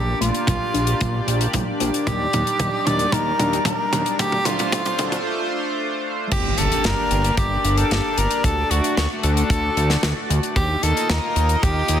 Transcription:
0.00 0.14 A#1 loud
0.00 2.03 A#3 medium
0.00 6.28 D4 medium
0.00 0.21 G4 loud
0.00 2.05 G4 medium
0.00 4.15 D5 loud
0.21 0.31 A#1 medium
0.21 0.46 A3 medium
0.21 1.76 F4 loud
0.21 closed hi-hat medium
0.34 closed hi-hat medium
0.47 0.58 A#1 medium
0.47 0.73 A#3 medium
0.47 kick loud
0.47 closed hi-hat loud
0.47 mid tom medium
0.74 0.94 A#1 medium
0.74 0.93 D4 medium
0.74 closed hi-hat medium
0.87 closed hi-hat medium
1.01 1.21 A#1 loud
1.01 1.12 A#3 medium
1.01 kick medium
1.01 closed hi-hat medium
1.01 mid tom medium
1.27 1.47 A#1 loud
1.27 closed hi-hat medium
1.41 closed hi-hat medium
1.53 1.64 A#1 medium
1.53 1.72 A3 medium
1.53 kick medium
1.53 closed hi-hat loud
1.53 mid tom medium
1.80 1.90 A#1 medium
1.80 2.05 F3 loud
1.80 closed hi-hat medium
1.94 closed hi-hat medium
2.07 2.27 D#2 loud
2.07 2.18 G3 loud
2.07 4.17 G3 medium
2.07 4.17 D#4 medium
2.07 2.88 G4 loud
2.07 kick medium
2.07 closed hi-hat medium
2.07 mid tom medium
2.33 2.43 D#2 medium
2.33 2.59 A#3 medium
2.33 closed hi-hat medium
2.33 mid tom medium
2.47 closed hi-hat medium
2.60 2.70 D#2 medium
2.60 kick loud
2.60 closed hi-hat loud
2.60 mid tom medium
2.86 3.06 D#2 medium
2.86 2.98 D4 medium
2.86 3.15 D5 loud
2.86 closed hi-hat medium
2.86 mid tom medium
2.99 closed hi-hat medium
3.12 3.33 D#2 loud
3.12 3.38 D#4 loud
3.12 3.65 A#4 loud
3.12 kick loud
3.12 closed hi-hat medium
3.12 mid tom medium
3.39 3.59 D#2 medium
3.39 3.58 D4 loud
3.39 closed hi-hat medium
3.39 mid tom medium
3.53 closed hi-hat medium
3.65 3.76 D#2 medium
3.65 3.85 A#3 medium
3.65 4.21 A#4 loud
3.65 kick loud
3.65 closed hi-hat medium
3.65 mid tom medium
3.93 4.03 D#2 medium
3.93 4.18 G3 medium
3.93 closed hi-hat medium
3.93 mid tom medium
4.06 closed hi-hat medium
4.19 4.39 D2 medium
4.19 6.29 A3 medium
4.19 6.29 F4 medium
4.19 4.47 G4 loud
4.19 6.29 C5 loud
4.19 kick medium
4.19 closed hi-hat medium
4.19 mid tom medium
4.32 mid tom medium
4.45 4.56 D2 medium
4.45 4.71 A3 medium
4.45 5.25 F4 medium
4.45 closed hi-hat loud
4.45 mid tom loud
4.59 closed hi-hat medium
4.59 mid tom medium
4.72 4.82 D2 medium
4.72 4.98 C4 medium
4.72 kick loud
4.72 closed hi-hat medium
4.72 mid tom loud
4.85 closed hi-hat medium
4.85 mid tom medium
4.99 5.19 D2 loud
4.99 5.17 D4 medium
4.99 closed hi-hat medium
4.99 mid tom loud
5.12 closed hi-hat medium
5.12 mid tom medium
6.31 6.52 G1 loud
6.31 8.42 A#3 medium
6.31 10.52 D4 medium
6.31 8.42 G4 medium
6.31 6.60 G4 loud
6.31 10.52 D5 loud
6.31 kick loud
6.31 closed hi-hat medium
6.31 crash medium
6.31 impact medium
6.58 6.68 G1 medium
6.58 6.87 A4 loud
6.58 closed hi-hat loud
6.72 closed hi-hat medium
6.84 6.95 G1 medium
6.84 7.37 A#4 loud
6.84 snare loud
6.84 closed hi-hat medium
7.11 7.31 G1 loud
7.11 closed hi-hat medium
7.24 closed hi-hat medium
7.37 7.58 G1 loud
7.37 7.79 G4 loud
7.37 kick loud
7.37 closed hi-hat medium
7.65 7.84 G1 loud
7.65 closed hi-hat medium
7.77 8.19 A4 loud
7.77 closed hi-hat medium
7.91 8.01 G1 medium
7.91 snare loud
7.91 closed hi-hat medium
8.18 8.28 G1 medium
8.18 8.46 A#4 loud
8.18 closed hi-hat loud
8.31 closed hi-hat medium
8.44 8.64 D2 loud
8.44 10.54 A3 medium
8.44 10.54 F#4 medium
8.44 8.72 A4 loud
8.44 kick loud
8.44 closed hi-hat medium
8.71 8.81 D2 medium
8.71 8.97 F#4 medium
8.71 closed hi-hat medium
8.84 closed hi-hat medium
8.97 9.07 D2 loud
8.97 9.09 F#4 medium
8.97 snare loud
8.97 closed hi-hat loud
9.23 9.44 D2 loud
9.23 10.26 A4 loud
9.23 closed hi-hat medium
9.37 closed hi-hat medium
9.50 9.70 D2 loud
9.50 kick loud
9.50 closed hi-hat medium
9.77 9.97 D2 loud
9.77 closed hi-hat medium
9.90 snare soft
9.90 closed hi-hat medium
10.03 10.13 D2 medium
10.03 snare loud
10.03 closed hi-hat loud
10.30 10.40 D2 loud
10.30 closed hi-hat loud
10.43 closed hi-hat medium
10.56 10.76 D#2 medium
10.56 12.00 A#3 medium
10.56 12.00 D#4 medium
10.56 12.00 F4 medium
10.56 10.85 G4 loud
10.56 12.00 D#5 loud
10.56 kick loud
10.56 closed hi-hat medium
10.83 10.93 D#2 medium
10.83 11.11 A4 loud
10.83 closed hi-hat medium
10.97 closed hi-hat medium
11.10 11.20 D#2 medium
11.10 11.64 A#4 loud
11.10 snare loud
11.10 closed hi-hat medium
11.36 11.56 D#2 medium
11.36 closed hi-hat medium
11.49 closed hi-hat medium
11.63 11.83 D#2 loud
11.63 12.00 G4 loud
11.63 kick loud
11.63 closed hi-hat medium
11.88 12.00 D#2 loud
11.88 closed hi-hat loud

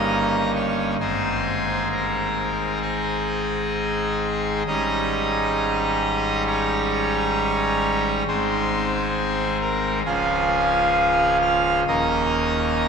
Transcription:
0.00 0.97 G1 medium
0.00 0.97 G2 medium
0.00 0.97 A#3 medium
0.00 0.97 C#4 medium
0.00 0.97 D#4 soft
0.00 0.51 D#5 medium
0.00 0.51 A#5 medium
0.00 0.51 D#6 loud
0.55 0.94 C#5 medium
0.55 0.94 C#6 medium
1.00 4.63 G#1 medium
1.00 4.63 G#2 medium
1.00 4.63 G#3 soft
1.00 4.63 C4 soft
1.00 4.63 D#4 soft
1.00 1.88 C5 medium
1.00 1.88 G#5 medium
1.00 1.88 C6 loud
1.91 2.79 A#4 medium
1.91 2.79 A#5 medium
2.82 4.63 G#4 medium
2.82 4.63 D#5 medium
2.82 4.63 G#5 medium
4.67 8.23 G#1 medium
4.67 8.24 G#2 medium
4.67 8.23 G3 medium
4.67 8.23 C#4 medium
4.67 8.23 D#4 medium
4.67 6.43 D#5 medium
4.67 6.43 A#5 medium
4.67 6.43 D#6 loud
6.47 8.23 C#5 medium
6.47 8.23 A#5 medium
6.47 8.23 C#6 loud
8.27 10.02 G#1 medium
8.27 10.03 G#2 medium
8.27 10.02 G#3 medium
8.27 10.03 C4 medium
8.27 10.02 D#4 soft
8.27 9.58 C5 medium
8.27 9.58 G#5 medium
8.27 9.58 C6 loud
9.61 9.99 A#4 medium
9.61 9.99 A#5 loud
10.06 11.83 C#1 medium
10.06 11.83 C#2 medium
10.06 11.83 F3 medium
10.06 11.83 C#4 medium
10.06 11.83 F4 medium
10.06 11.38 G#4 medium
10.06 11.38 F5 medium
10.06 11.38 G#5 loud
11.42 11.81 F5 medium
11.42 11.81 F6 loud
11.87 12.88 D#1 medium
11.87 12.88 D#2 medium
11.87 12.88 A#3 medium
11.87 12.88 C#4 medium
11.87 12.88 D#4 medium
11.87 12.88 D#5 loud
11.87 12.88 A#5 loud
11.87 12.88 D#6 loud

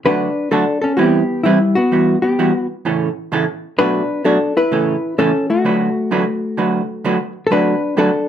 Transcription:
0.05 0.28 D3 medium
0.05 0.28 F#3 medium
0.05 0.28 A3 medium
0.05 0.28 D4 medium
0.05 0.49 D4 medium
0.05 0.29 F#4 medium
0.05 0.49 B4 loud
0.51 0.64 D3 medium
0.51 0.64 F#3 medium
0.51 0.64 A3 medium
0.51 0.64 D4 medium
0.51 0.82 D4 medium
0.51 0.64 F#4 medium
0.51 0.80 A4 medium
0.82 0.98 C#4 medium
0.82 0.96 A4 medium
0.97 1.21 E3 medium
0.97 1.21 G3 medium
0.97 1.42 B3 medium
0.97 1.21 C4 medium
0.97 1.22 E4 medium
0.97 1.41 G4 medium
0.97 1.22 B4 medium
1.43 1.57 E3 medium
1.43 1.57 G3 medium
1.43 1.75 G3 medium
1.43 1.57 C4 medium
1.43 1.77 E4 medium
1.43 1.58 E4 medium
1.43 1.58 B4 medium
1.75 2.20 B3 medium
1.75 2.22 F#4 medium
1.92 2.15 E3 medium
1.92 2.15 G3 medium
1.92 2.15 B3 medium
1.92 2.15 F#4 medium
2.22 2.67 B3 medium
2.22 2.66 G4 medium
2.39 2.51 E3 medium
2.39 2.51 G3 medium
2.39 2.51 B3 medium
2.39 2.51 F#4 medium
2.85 3.08 A2 medium
2.85 3.08 C#3 medium
2.85 3.08 E3 medium
2.85 3.08 A3 medium
2.85 3.08 C#4 medium
2.85 3.09 A4 medium
3.32 3.44 A2 medium
3.32 3.44 C#3 medium
3.32 3.44 E3 medium
3.32 3.44 A3 medium
3.32 3.44 C#4 medium
3.32 3.45 A4 medium
3.78 4.01 B2 medium
3.78 4.01 F#3 medium
3.78 4.01 A3 medium
3.78 4.22 D4 medium
3.78 4.02 D4 medium
3.78 4.02 F#4 medium
3.78 4.26 B4 loud
4.25 4.37 B2 medium
4.25 4.37 F#3 medium
4.25 4.37 A3 medium
4.25 4.55 D4 medium
4.25 4.37 D4 medium
4.25 4.38 F#4 medium
4.25 4.57 A4 medium
4.57 5.14 E4 medium
4.57 5.20 B4 loud
4.72 4.94 A2 medium
4.72 4.95 C#3 medium
4.72 4.95 E3 medium
4.72 4.95 A3 medium
4.72 4.95 C#4 medium
4.72 4.95 A4 medium
5.18 5.30 A2 medium
5.18 5.30 C#3 medium
5.18 5.31 E3 medium
5.18 5.31 A3 medium
5.18 5.48 C#4 medium
5.18 5.31 C#4 medium
5.18 5.50 A4 medium
5.18 5.31 A4 medium
5.50 7.32 A3 medium
5.50 7.32 F#4 medium
5.65 5.88 D3 medium
5.65 5.88 F#3 medium
5.65 5.88 A3 medium
5.65 5.88 D4 medium
5.65 5.88 F#4 medium
5.65 5.88 B4 medium
6.11 6.23 D3 medium
6.11 6.24 F#3 medium
6.11 6.24 A3 medium
6.11 6.24 D4 medium
6.11 6.24 F#4 medium
6.11 6.24 B4 medium
6.57 6.81 D3 medium
6.57 6.81 F#3 medium
6.57 6.81 A3 medium
6.57 6.81 D4 medium
6.57 6.81 F#4 medium
6.57 6.81 B4 medium
7.04 7.17 D3 medium
7.04 7.17 F#3 medium
7.04 7.17 A3 medium
7.04 7.17 D4 medium
7.04 7.17 F#4 medium
7.04 7.17 B4 medium
7.47 7.74 D3 medium
7.47 7.51 A4 medium
7.51 7.74 F#3 medium
7.51 7.74 A3 medium
7.51 7.74 D4 medium
7.51 7.95 D4 medium
7.51 7.74 F#4 medium
7.51 7.99 B4 loud
7.51 7.75 B4 medium
7.97 8.09 D3 medium
7.97 8.10 F#3 medium
7.97 8.10 A3 medium
7.97 8.10 D4 medium
7.97 8.29 D4 medium
7.97 8.10 F#4 medium
7.97 8.29 A4 loud
7.97 8.10 B4 medium

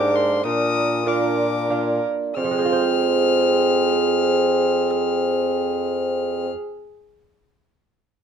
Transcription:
0.00 0.40 G#2 medium
0.00 0.45 G#2 medium
0.00 0.40 A#3 medium
0.00 0.41 D4 medium
0.00 0.43 D4 medium
0.00 0.41 G4 medium
0.00 0.44 A#4 medium
0.00 0.17 D6 medium
0.15 0.45 C6 medium
0.44 1.99 A#2 medium
0.44 2.00 A#2 medium
0.44 1.05 D4 medium
0.44 1.04 A#4 medium
0.44 1.09 D#6 loud
1.06 1.66 A#3 soft
1.06 1.66 D4 soft
1.06 2.01 D4 medium
1.06 1.66 F4 medium
1.06 2.09 A#4 medium
1.06 2.04 D6 medium
1.70 2.33 A#3 soft
1.70 2.33 D4 soft
1.70 2.33 F4 medium
2.36 6.50 F2 medium
2.36 6.50 C4 medium
2.36 6.50 G#4 medium
2.36 6.49 F6 medium
2.44 6.57 F3 medium
2.51 6.64 G#3 medium
2.58 6.71 C4 medium
2.65 6.78 F4 medium
2.72 6.85 C5 medium

